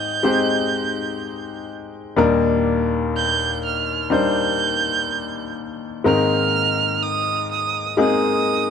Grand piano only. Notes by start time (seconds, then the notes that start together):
Already playing: G#2 D#3 G#3 C4 D#4 G4 C5
0.23 G#3 C4 D#4 G4 C5
2.16 D#2 A#2 G3 A#3 D4 D#4 A#4
4.10 G3 A#3 D4 D#4 C5
6.04 G#2 D#3 G#3 A#3 C4 D#4 A#4
7.97 G#3 A#3 C4 D#4 G#4